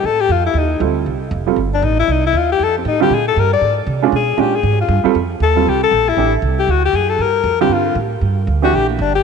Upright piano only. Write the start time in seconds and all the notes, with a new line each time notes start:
0.80 G3 C4 F4 A4
1.47 G3 C4 F4 A4
3.00 D3 G3 C4 F4
4.02 G#3 C#4 D4 F4
4.37 G#3 C#4 D4 F4
5.04 G3 C4 F4 A4
5.56 G3 C4 F4 A4
6.17 E3 A3 D4 G4
7.61 D3 G3 C4 F4
8.62 E3 A3 D4 G4